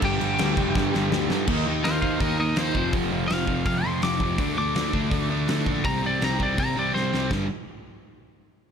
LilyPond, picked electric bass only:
\new Staff \with { instrumentName = "Picked electric bass" } { \clef bass \time 4/4 \key g \minor \tempo 4 = 164 g,,8 g,,8 d,8 f,,8 g,8 g,,8 d,8 g,8 | ees,8 ees,8 ees,8 ees,8 ees,4 ees,8 f,,8 | f,,4 f,,8 f,,8 f,,8 f,,8 f,,8 f,,8 | d,8 d,8 d,8 d,8 d,4 d,8 bes,,8 |
c,4 c,8 c,8 c,8 c,8 c,8 c,8 | g,,8 r2. r8 | }